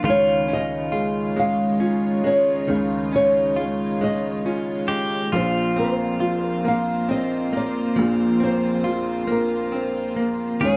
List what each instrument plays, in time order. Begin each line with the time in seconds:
0.01 felt piano C#2 C#3, clean electric guitar D#3, string section G#3 D#4 F4 C#5
0.05 pedal steel guitar F4
0.10 nylon-string guitar C#5
0.47 felt piano C#4, clean electric guitar C#4
0.53 nylon-string guitar D#5
0.92 felt piano G#3, clean electric guitar F4
1.36 clean electric guitar G#3, felt piano C#4, nylon-string guitar F5
1.80 clean electric guitar C#4, felt piano F4
2.24 clean electric guitar G#3, felt piano C#4, nylon-string guitar C#5
2.68 felt piano C#2 C#3, clean electric guitar D#3
3.13 clean electric guitar C#4, felt piano C#4, nylon-string guitar C#5
3.56 felt piano G#3, clean electric guitar F4
4.01 clean electric guitar G#3, felt piano C#4, nylon-string guitar D#5
4.45 clean electric guitar C#4, felt piano F4
4.88 clean electric guitar G#3, felt piano C#4, pedal steel guitar G4
5.30 felt piano A#1 A#2, clean electric guitar F3, string section A#3 C4 F4 C5, pedal steel guitar F4
5.36 nylon-string guitar C5
5.76 felt piano A#3, clean electric guitar C4, nylon-string guitar C5
6.20 felt piano F3, clean electric guitar F4
6.44 nylon-string guitar A#4
6.65 clean electric guitar A#3, felt piano A#3, nylon-string guitar F5
7.09 clean electric guitar C4, felt piano C4, nylon-string guitar D#5
7.53 clean electric guitar A#3, felt piano A#3
7.57 nylon-string guitar D5
7.96 felt piano A#1 A#2, clean electric guitar F3
8.40 felt piano A#3, clean electric guitar C4, nylon-string guitar C5
8.84 felt piano F3, clean electric guitar F4
9.27 clean electric guitar A#3, felt piano A#3
9.32 nylon-string guitar A#4
9.72 clean electric guitar C4, felt piano C4
10.16 clean electric guitar A#3, felt piano A#3
10.61 felt piano C#2 C#3, clean electric guitar D#3, string section G#3 D#4 C#5, pedal steel guitar G#4
10.65 nylon-string guitar C#5